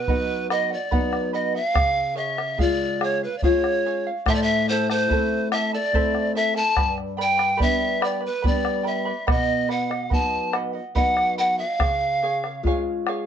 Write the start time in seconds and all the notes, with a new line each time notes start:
Already playing: B4
0.07 F#3 B3 D#4 B4 D#5 F#5, bombo low
0.50 B4 D#5 F#5, bombo rim
0.70 D5 D#5 F#5
0.91 F#3 B3 D#4 B4 F#5, bombo low
1.13 bombo rim
1.33 B4 D#5 F#5
1.54 D#5 F5 F#5
1.74 C#3 G#4 C#5 F5, bombo rim, bombo low
2.15 G#4 C#5 E5 F5, bombo rim
2.38 C#5 F5, bombo rim
2.58 C#3 G#3 F4 G#4 D5 F5, bombo low
3.01 G#4 C#5 F5, bombo rim
3.23 B4 C#5 F5
3.38 D5
3.43 G#3 C#4 F4 G#4 C#5 F5, bombo low
3.64 bombo rim
3.86 G#4 C#5 F5
4.07 C#5 F5
4.26 A2 E4 A4 C5 E5, bombo rim, bombo low
4.30 A5
4.35 D5
4.42 E5
4.69 E4 A4 C5 E5 A5, bombo rim
4.90 E4 A4 C5 A5, bombo rim
5.08 A3 C4 E4 E5, bombo low
5.12 A4 A5
5.52 E4 A4 E5 A5, bombo rim
5.73 E4 A4 D5 A5
5.93 A3 C4 E4 A4 C5 E5 A5, bombo low
6.15 bombo rim
6.35 E4 A4 E5 A5
6.55 E4 A4 A5
6.76 G2 B4 D5 G5 B5, bombo rim, bombo low
6.98 bombo rim
7.17 B4 D5 G5 B5
7.21 G5
7.38 B4 D5 B5, bombo rim
7.57 G3 B3 G4 B4 D5 G5 B5, bombo low
7.61 D4 E5
8.01 B4 D5 G5 B5, bombo rim
8.21 B4 D5 B5
8.26 B4
8.42 G3 B3 D4 B4 D5 G5 B5, bombo rim, bombo low
8.47 D5
8.65 bombo rim
8.83 B4 D5 E5 G5 B5
9.05 B4 D5 B5
9.27 B2 B4 D#5 F#5, bombo rim, bombo low
9.31 D#5
9.69 B4 D#5 F#5, bombo rim
9.89 D#5 F#5, bombo rim
10.10 F#3 B3 D#4 B4 D#5 F#5 A5, bombo low
10.53 B4 D#5 F#5, bombo rim
10.73 D#5 F#5
10.95 F#3 B3 D#4 B4 D#5 F#5, bombo low
11.17 bombo rim
11.38 B4 D#5 F#5
11.58 D#5 F5 F#5
11.79 C#3 G#4 C#5 F5, bombo rim, bombo low
12.23 G#4 C#5 F5, bombo rim
12.44 C#5 F5, bombo rim
12.63 G#3 C#4 F4 G#4 C#5 F5, bombo low
13.07 G#4 C#5 F5, bombo rim